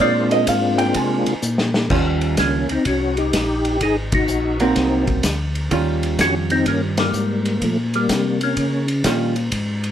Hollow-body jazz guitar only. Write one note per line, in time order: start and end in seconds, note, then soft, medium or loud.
0.01 0.31 D5 loud
0.32 0.47 D#5 loud
0.49 0.78 F5 loud
0.78 0.96 G5 medium
0.96 1.83 G#5 loud
1.91 2.63 D#3 medium
1.91 2.63 G3 medium
1.91 2.64 C#4 medium
1.91 2.64 F4 medium
4.61 5.21 F#3 medium
4.61 5.21 A#3 medium
4.61 5.21 C4 medium
5.71 7.05 D#3 medium
5.71 7.05 G3 medium
5.71 7.05 C#4 medium
5.71 7.05 F4 medium
9.05 9.33 D#3 soft
9.05 9.34 G3 soft
9.05 9.34 C#4 soft
9.05 9.34 F4 soft